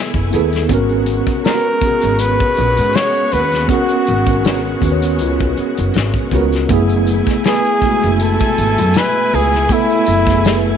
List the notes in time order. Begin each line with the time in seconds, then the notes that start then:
Already playing: A3 B3 E4 G#4 A4 B4 G#5
0.14 F#1, kick
0.30 D#2 A3 B3 E4 G#4, closed hi-hat
0.35 A4 B4
0.53 snare, closed hi-hat
0.69 G#1 C#3 G#3 B3 C#4 F#4, kick, closed hi-hat
0.74 A#4
0.89 closed hi-hat
1.06 closed hi-hat
1.27 kick, closed hi-hat
1.44 B3 F#4 A#4 C#5, snare, closed hi-hat
1.81 B3 C#4 F#4, muted upright bass stroke, kick, closed hi-hat
1.86 G#4
2.01 G#1, closed hi-hat
2.19 B4, closed hi-hat
2.40 kick
2.57 A#1, closed hi-hat
2.77 G#2, closed hi-hat
2.93 C#5, snare, closed hi-hat
3.15 closed hi-hat
3.32 D#2 B3 F#4 A#4 B4 C#5, closed hi-hat
3.52 snare, closed hi-hat
3.68 B3 C#4 F#4, kick, closed hi-hat
3.73 A#4
3.88 closed hi-hat
4.06 G#1, closed hi-hat
4.26 B3 C#4 F#4, kick, closed hi-hat
4.31 A#4
4.45 B3 F#4 A#4 C#5, snare, closed hi-hat
4.65 closed hi-hat
4.80 D#2 B3 C#4 F#4, kick, closed hi-hat
4.86 B4
4.92 C#5
5.02 closed hi-hat
5.19 C#2, closed hi-hat
5.39 kick, closed hi-hat
5.57 muted upright bass stroke, closed hi-hat
5.77 F#1, closed hi-hat
5.94 G#1, snare, closed hi-hat
6.14 kick, closed hi-hat
6.31 C#2 B3 C#4 F#4 A#4 C#5, kick, closed hi-hat
6.36 A#4
6.52 snare, closed hi-hat
6.68 F#1 B2 A3 B3 E4 G#5, kick, closed hi-hat
6.74 G#4
6.89 closed hi-hat
7.07 closed hi-hat
7.27 kick, snare, closed hi-hat
7.44 A3 E4 G#4 B4, snare, closed hi-hat
7.64 closed hi-hat
7.81 G#3 B3 E4, muted upright bass stroke, kick, closed hi-hat
7.86 A3 F#4
8.02 F#1, closed hi-hat
8.19 A4, closed hi-hat
8.40 kick, closed hi-hat
8.58 G#1, closed hi-hat
8.78 F#2, closed hi-hat
8.94 snare, closed hi-hat
8.98 B4
9.33 C#2 A3 E4 G#4 B4, open hi-hat
9.52 snare, closed hi-hat
9.69 A3 B3 E4, kick, closed hi-hat
9.73 E4 A4
9.89 closed hi-hat
10.06 F#1, closed hi-hat
10.26 A3 B3, kick, snare, closed hi-hat
10.31 G#4
10.45 A3 E4 G#4 B4, snare, closed hi-hat